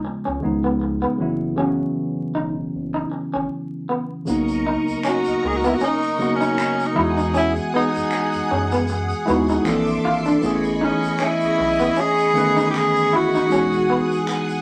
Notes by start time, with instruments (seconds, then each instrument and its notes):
Already playing: tine electric piano C#3 F3 G#3 B3 F4
0.05 muted clean electric guitar stroke
0.25 analog synth bass C#2, clean electric guitar C#4
0.40 tine electric piano C#3 D#3 G#3 B3
0.45 analog synth bass C#2, tine electric piano F3 D#4
0.64 clean electric guitar B3
0.81 muted clean electric guitar stroke
1.02 clean electric guitar B3
1.18 analog synth bass F#1, tine electric piano C#3 E3 F#3 B3
1.22 tine electric piano E4
1.56 tine electric piano C#3 E3 F#3 B3, clean electric guitar C#4
1.60 tine electric piano C#4
2.35 analog synth bass E1, clean electric guitar D#4
2.75 analog synth bass F#1
2.94 clean electric guitar D#4
3.12 muted clean electric guitar stroke
3.34 analog synth bass G#1, clean electric guitar C#4
3.89 clean electric guitar B3
4.25 analog synth bass B1, tine electric piano C#3 F#3 A#3 B3, string machine A#4 D#5 C#6, shaker
4.29 tine electric piano D#4
4.48 shaker
4.67 clean electric guitar D#4
4.88 analog synth bass C#2, shaker
5.04 clean electric guitar C#4, finger snap, shaker
5.08 tenor saxophone F#4
5.24 analog synth bass C#2, shaker
5.43 analog synth bass C#2, muted clean electric guitar stroke
5.47 tenor saxophone G#4
5.57 tenor saxophone F#4
5.63 clean electric guitar B3, tenor saxophone E4, shaker
5.75 tenor saxophone F#4
5.80 clean electric guitar C#4, shaker
5.84 tenor saxophone D#4
6.02 shaker
6.18 tine electric piano C#3 F#3 A#3 B3, muted clean electric guitar stroke, shaker
6.22 tine electric piano F#4
6.36 tenor saxophone C#4
6.41 clean electric guitar D#4, shaker
6.58 finger snap, muted clean electric guitar stroke, shaker
6.79 shaker
6.86 tenor saxophone D#4
6.95 analog synth bass E2, tine electric piano E3 G#3 B3 D#5, clean electric guitar E4, string machine G#4 F#5 D#6
6.99 tine electric piano F#4
7.17 clean electric guitar D#4, shaker
7.34 clean electric guitar C#4, tenor saxophone E4, shaker
7.55 shaker
7.74 clean electric guitar B3, tenor saxophone D#4
7.95 analog synth bass F#2, shaker
8.11 finger snap, muted clean electric guitar stroke, shaker
8.32 analog synth bass F#2, shaker
8.51 analog synth bass F#2, clean electric guitar C#4
8.71 clean electric guitar B3, shaker
8.88 muted clean electric guitar stroke, shaker
9.09 shaker
9.26 analog synth bass D#2, tine electric piano G#3 B3 D#4 E4, clean electric guitar B3, shaker
9.30 tine electric piano F#4
9.48 clean electric guitar D#4, shaker
9.64 analog synth bass A#1, tine electric piano E3 A#3 C4 D4, string machine A4 E5 C6 D6, finger snap, muted clean electric guitar stroke, shaker
9.69 tine electric piano A4
9.86 shaker
10.05 analog synth bass G#1, clean electric guitar F4
10.26 clean electric guitar D4, shaker
10.42 analog synth bass A1, tine electric piano E3 A3 B3 C#4, string machine G#4 D#5 B5 C#6, shaker
10.46 tine electric piano G#4
10.63 shaker
10.81 tenor saxophone C#4, clean electric guitar D#4
11.03 analog synth bass B1, shaker
11.19 clean electric guitar C#4, tenor saxophone E4, finger snap, shaker
11.40 analog synth bass B1, shaker
11.58 analog synth bass B1, muted clean electric guitar stroke
11.79 clean electric guitar B3, shaker
11.96 clean electric guitar C#4, shaker
12.00 tenor saxophone G#4
12.18 shaker
12.33 tine electric piano D#3 A3 B3 C#4, muted clean electric guitar stroke, shaker
12.38 tine electric piano B4
12.56 clean electric guitar D#4, shaker
12.71 tenor saxophone G4, finger snap, muted clean electric guitar stroke, shaker
12.77 tenor saxophone G#4
12.95 shaker
13.13 clean electric guitar E4, tenor saxophone F#4
13.34 clean electric guitar D#4, shaker
13.49 analog synth bass E1, tine electric piano E3 G#3 B3 D#4, clean electric guitar C#4, string machine F#5 D#6, shaker
13.53 tine electric piano F#4
13.72 shaker
13.90 clean electric guitar B3
14.12 analog synth bass F#1, shaker
14.27 finger snap, muted clean electric guitar stroke, shaker
14.49 analog synth bass F#1, shaker